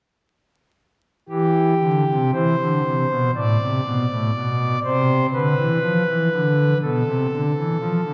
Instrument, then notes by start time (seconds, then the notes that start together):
pipe organ
1.29 E3 G4
1.81 D3
2.10 C3
2.33 E3 C5
2.61 D3
2.85 C3
3.09 B2
3.35 A2 D5
3.61 C3
3.84 B2
4.11 A2
4.35 B2
4.84 C3 C5
5.33 D3 B4
5.57 E3
5.81 F3
6.09 E3
6.32 D3
6.82 B2 A4
7.06 C3
7.32 D3
7.57 E3
7.80 F3
8.05 D3